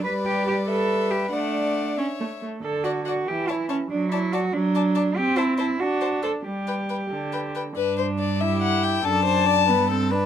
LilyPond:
<<
  \new Staff \with { instrumentName = "Violin" } { \time 6/8 \key d \major \tempo 4. = 94 d''4. e''4. | fis''4. e''4 r8 | r8 fis''8 fis''8 r8 a''8 a''8 | r8 a''8 a''8 r8 a''8 a''8 |
\key g \major r8 a''8 a''8 r8 a''8 a''8 | r8 g''8 g''8 r8 g''8 g''8 | b'8 c''8 d''8 e''8 fis''8 g''8 | a''2~ a''8 r8 | }
  \new Staff \with { instrumentName = "Violin" } { \time 6/8 \key d \major b'4. b'4. | d''4. cis''4 r8 | r8 d''8 d''8 r8 cis''8 cis''8 | r8 d''8 d''8 r8 d''8 d''8 |
\key g \major r8 c''8 c''8 r8 c''8 c''8 | r8 b'8 b'8 r8 b'8 b'8 | r4. g'4. | a'8 c''8 d''8 b'8 a'8 b'8 | }
  \new Staff \with { instrumentName = "Cello" } { \time 6/8 \key d \major b'8 g'8 g'8 a'4 g'8 | d'4. r4. | a'8 fis'8 fis'8 g'8 e'8 cis'8 | d'8 e'8 fis'8 d'4. |
\key g \major g'8 e'8 e'8 fis'4 a'8 | g'2~ g'8 r8 | g,2. | fis,4. g,4. | }
  \new Staff \with { instrumentName = "Viola" } { \time 6/8 \key d \major g2. | a4. cis'8 a8 a8 | d4. e4. | fis4. fis4. |
\key g \major c'4. d'4. | g4. d4. | d'4. e'4. | d'4. b8 c'8 d'8 | }
>>